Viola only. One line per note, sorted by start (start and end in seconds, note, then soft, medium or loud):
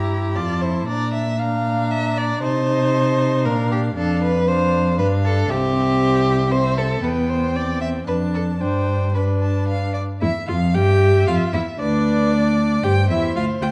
0.00 0.37 E4 medium
0.36 0.63 F4 medium
0.62 0.88 E4 medium
0.89 1.38 D4 medium
1.39 2.44 D4 medium
2.43 3.47 D#4 medium
3.45 3.95 D4 medium
3.96 4.46 D4 medium
4.47 4.97 D4 medium
4.98 5.52 D4 medium
5.50 6.51 C4 medium
6.51 7.02 C4 medium
7.03 7.56 B3 medium
7.55 8.07 C4 medium
8.07 8.60 D4 medium
8.61 9.14 D4 medium
9.14 10.00 D4 medium
10.22 10.30 E4 medium
10.48 10.56 F4 medium
10.75 11.29 G4 medium
11.27 11.53 F4 medium
11.54 11.62 E4 medium
11.80 12.82 D4 medium
12.84 12.92 G4 medium
13.10 13.35 E4 medium
13.36 13.44 F4 medium
13.61 13.69 F4 soft